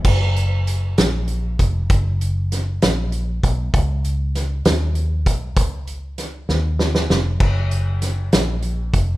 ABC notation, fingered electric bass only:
X:1
M:6/8
L:1/8
Q:3/8=65
K:F#
V:1 name="Fingered electric bass" clef=bass
F,,,3 A,,,2 E,,, | F,,,3 A,,,2 B,,, | C,,3 D,,2 B,,, | C,,3 D,,2 E,,, |
F,,,3 A,,,2 E,,, |]